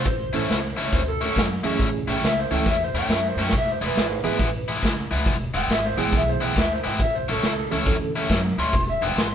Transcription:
0.05 upright bass A1, electric slide guitar C5, kick, closed hi-hat
0.33 upright bass A1, overdriven electric guitar A2 A3 C#4 E4, reed electric piano E3 A3 C#4 E4 A4, closed hi-hat
0.49 upright bass C#2, snare, closed hi-hat
0.77 upright bass C#2, overdriven electric guitar A2 A3 C#4 E4, closed hi-hat
0.93 upright bass D2, electric slide guitar C5, kick, closed hi-hat
1.08 electric slide guitar A4
1.21 overdriven electric guitar A2 A3 C#4 E4, electric slide guitar A4, closed hi-hat
1.36 upright bass F#2, kick, snare, closed hi-hat
1.64 upright bass F#2, overdriven electric guitar A2 A3 C#4 E4, reed electric piano E3 A3 C#4 E4 G#4, closed hi-hat
1.79 upright bass A1, kick, closed hi-hat
2.08 upright bass A1, overdriven electric guitar A2 A3 C#4 E4, electric slide guitar G5, closed hi-hat
2.22 upright bass C#2, electric slide guitar E5, snare, closed hi-hat
2.40 electric slide guitar C5
2.51 upright bass C#2, overdriven electric guitar A2 A3 C#4 E4, reed electric piano E3 A3 C#4 E4 A4, electric slide guitar G5, closed hi-hat
2.66 upright bass E2, electric slide guitar E5, kick, snare, closed hi-hat
2.84 electric slide guitar C5
2.94 upright bass E2, overdriven electric guitar A2 A3 C#4 E4, closed hi-hat
2.98 electric slide guitar G5
3.09 upright bass F#2, snare, closed hi-hat
3.13 electric slide guitar E5
3.28 electric slide guitar C5
3.36 upright bass F#2, overdriven electric guitar A2 A3 C#4 E4, snare
3.42 electric slide guitar G5
3.49 upright bass E1, kick, snare, closed hi-hat
3.58 electric slide guitar E5
3.72 electric slide guitar C5
3.81 upright bass E1, overdriven electric guitar E3 G#3 B3 E4, closed hi-hat
3.86 electric slide guitar B4
3.96 upright bass G#1, snare, closed hi-hat
4.24 upright bass G#1, reed electric piano E3 G#3 B3 E4 G#4, overdriven electric guitar E3 G#3 B3 E4, closed hi-hat
4.39 upright bass A1, kick, closed hi-hat
4.68 overdriven electric guitar E3 G#3 B3 E4, closed hi-hat
4.83 upright bass C#2, kick, snare, closed hi-hat
5.11 upright bass C#2, overdriven electric guitar E3 G#3 B3 E4, closed hi-hat
5.26 upright bass E1, kick, closed hi-hat
5.54 upright bass E1, overdriven electric guitar E3 G#3 B3 E4, electric slide guitar G5, closed hi-hat
5.68 upright bass G#1, snare, closed hi-hat
5.72 electric slide guitar E5
5.86 electric slide guitar C5
5.97 upright bass G#1, reed electric piano E3 G#3 B3 E4 G#4, overdriven electric guitar E3 G#3 B3 E4, electric slide guitar G5, closed hi-hat
6.13 upright bass B1, electric slide guitar E5, kick, snare, closed hi-hat
6.29 electric slide guitar C5
6.41 upright bass B1, overdriven electric guitar E3 G#3 B3 E4, electric slide guitar G5, closed hi-hat
6.56 upright bass D2, electric slide guitar E5, kick, snare, closed hi-hat
6.72 electric slide guitar C5
6.84 upright bass G#1, overdriven electric guitar E3 G#3 B3 E4, electric slide guitar G5, closed hi-hat
6.99 upright bass A1, electric slide guitar E5, kick, closed hi-hat
7.15 electric slide guitar C5
7.28 upright bass A1, overdriven electric guitar A2 A3 C#4 E4, electric slide guitar A4, closed hi-hat
7.42 upright bass C#2, snare, closed hi-hat
7.70 upright bass C#2, overdriven electric guitar A2 A3 C#4 E4, reed electric piano E3 A3 C#4 E4 A4, closed hi-hat
7.86 upright bass D2, kick, closed hi-hat
8.15 overdriven electric guitar A2 A3 C#4 E4, closed hi-hat
8.29 upright bass F#2, kick, snare, closed hi-hat
8.58 upright bass D2, overdriven electric guitar A2 A3 C#4 E4, electric slide guitar C6, closed hi-hat
8.73 upright bass E1, kick, closed hi-hat
8.89 electric slide guitar E5
9.01 upright bass E1, overdriven electric guitar E3 G#3 B3 E4, electric slide guitar G5, closed hi-hat
9.16 upright bass G#1, electric slide guitar C6, snare, closed hi-hat

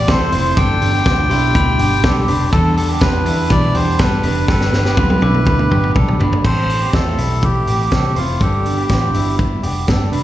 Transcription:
Already playing: string machine C3 E3 A3 E4 A4, melodica D5
0.07 picked electric bass C2, steel-string acoustic guitar E3 A3 C4 E4, clean electric guitar C4 A4, melodica C5, glockenspiel C6, kick, snare, hi-hat pedal, ride
0.32 picked electric bass F1, steel-string acoustic guitar A3 C4 E4, clean electric guitar E4 C5, open hi-hat
0.57 picked electric bass G1, string machine B2 D3 G3 D4 G4, steel-string acoustic guitar G3 B3 D4 G4, clean electric guitar D4 A4, melodica G5, glockenspiel D6, kick, hi-hat pedal, ride
0.81 picked electric bass G1, steel-string acoustic guitar B3 D4 G4, open hi-hat
0.93 clean electric guitar B3 G4
1.05 picked electric bass D2, steel-string acoustic guitar G3 B3 D4 G4, clean electric guitar B3 F4, glockenspiel D6, kick, snare, hi-hat pedal, ride
1.29 picked electric bass B1, clean electric guitar G3 E4, steel-string acoustic guitar B3 D4 G4, glockenspiel C6, open hi-hat
1.54 picked electric bass D2, steel-string acoustic guitar G3 B3 D4 G4, glockenspiel B5, kick, hi-hat pedal, ride
1.78 picked electric bass G1, clean electric guitar B3 G4, steel-string acoustic guitar B3 D4 G4, open hi-hat
2.03 picked electric bass B1, steel-string acoustic guitar G3 B3 D4 G4, clean electric guitar D4 A4, melodica G4, kick, snare, hi-hat pedal, ride
2.28 picked electric bass F1, steel-string acoustic guitar B3 D4 G4, clean electric guitar D4 B4, open hi-hat
2.52 picked electric bass E2, steel-string acoustic guitar E3 B3 D4 G4, string machine E3 B3 E4, clean electric guitar D4 A4, melodica A4, glockenspiel A5, kick, hi-hat pedal, ride
2.77 steel-string acoustic guitar B3 D4 G4, melodica A4, open hi-hat
2.89 clean electric guitar B3 G4
3.01 picked electric bass F2, steel-string acoustic guitar E3 B3 D4 G4, clean electric guitar B3 F4, melodica B4, kick, snare, hi-hat pedal, ride
3.25 picked electric bass E2, clean electric guitar G3 E4, steel-string acoustic guitar B3 D4 G4, open hi-hat
3.50 picked electric bass B1, steel-string acoustic guitar E3 B3 D4 G4, melodica D5, kick, hi-hat pedal, ride
3.74 picked electric bass E2, clean electric guitar B3 G4, steel-string acoustic guitar B3 D4 G4, melodica C5, open hi-hat
3.99 picked electric bass G2, steel-string acoustic guitar E3 B3 D4 G4, clean electric guitar D4 A4, melodica B4, kick, snare, hi-hat pedal, ride
4.23 picked electric bass F1, steel-string acoustic guitar B3 D4 G4, clean electric guitar D4 B4, open hi-hat
4.48 picked electric bass G1, string machine B2 D3 G3 D4 G4, steel-string acoustic guitar G3 B3 D4 G4, clean electric guitar D4 A4, melodica B4, glockenspiel G5, kick, snare
4.61 snare
4.72 picked electric bass G1, steel-string acoustic guitar B3 D4 G4, snare
4.85 clean electric guitar B3 G4, snare
4.97 picked electric bass D2, steel-string acoustic guitar G3 B3 D4 G4, clean electric guitar B3 F4, glockenspiel B5, kick, high tom
5.10 high tom
5.21 picked electric bass B1, clean electric guitar G3 E4, steel-string acoustic guitar B3 D4 G4, glockenspiel D6, high tom
5.34 mid tom
5.45 picked electric bass D2, steel-string acoustic guitar G3 B3 D4 G4, kick, mid tom
5.59 mid tom
5.70 picked electric bass G1, clean electric guitar B3 G4, steel-string acoustic guitar B3 D4 G4, mid tom
5.83 mid tom
5.94 picked electric bass B1, steel-string acoustic guitar G3 B3 D4 G4, clean electric guitar D4 A4, kick, mid tom
6.08 floor tom
6.19 picked electric bass G1, steel-string acoustic guitar B3 D4 G4, clean electric guitar D4 B4, floor tom
6.33 floor tom
6.44 picked electric bass A1, steel-string acoustic guitar A2 E3 A3 C4 E4, clean electric guitar C4 A4, melodica C5, kick, crash
6.68 steel-string acoustic guitar A3 C4 E4, open hi-hat
6.82 clean electric guitar B3 G4
6.93 picked electric bass E2, steel-string acoustic guitar A2 E3 A3 C4 E4, clean electric guitar A3 F4, melodica A4, kick, snare, closed hi-hat
7.17 picked electric bass B1, clean electric guitar G3 E4, steel-string acoustic guitar A3 C4 E4, open hi-hat
7.41 steel-string acoustic guitar E3 A3 C4 E4, melodica G4, kick, closed hi-hat
7.66 picked electric bass A1, steel-string acoustic guitar A3 C4 E4, clean electric guitar B3 G4, open hi-hat
7.91 picked electric bass C2, steel-string acoustic guitar A2 E3 A3 C4 E4, clean electric guitar C4 A4, kick, snare, closed hi-hat
8.15 picked electric bass F1, steel-string acoustic guitar A3 C4 E4, clean electric guitar E4 C5, melodica F4, open hi-hat
8.40 picked electric bass G1, steel-string acoustic guitar G2 D3 G3 B3 D4, clean electric guitar D4 A4, melodica G4, kick, closed hi-hat
8.64 steel-string acoustic guitar G3 B3 D4, open hi-hat
8.78 clean electric guitar B3 G4
8.89 picked electric bass A1, steel-string acoustic guitar G2 D3 G3 B3 D4, clean electric guitar B3 F4, kick, snare, closed hi-hat
9.13 picked electric bass G1, clean electric guitar G3 E4, steel-string acoustic guitar G3 B3 D4, open hi-hat
9.38 steel-string acoustic guitar D3 G3 B3 D4, kick, closed hi-hat
9.62 picked electric bass F1, steel-string acoustic guitar G3 B3 D4, clean electric guitar B3 G4, open hi-hat
9.87 picked electric bass G1, steel-string acoustic guitar G2 D3 G3 B3 D4, clean electric guitar D4 A4, kick, snare, closed hi-hat
10.12 picked electric bass F1, steel-string acoustic guitar G3 B3 D4, clean electric guitar D4 B4, open hi-hat

